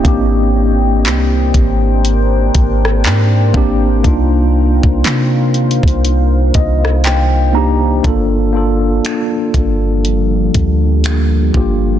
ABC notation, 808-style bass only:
X:1
M:4/4
L:1/16
Q:"Swing 16ths" 1/4=60
K:Cm
V:1 name="808-style bass" clef=bass
A,,,4 C,,2 A,,,4 A,,,2 A,,2 A,,,2 | C,,3 C,, C,3 C,,3 C,,6 | [K:Gm] G,,,4 z2 G,,,4 D,,4 G,,,2 |]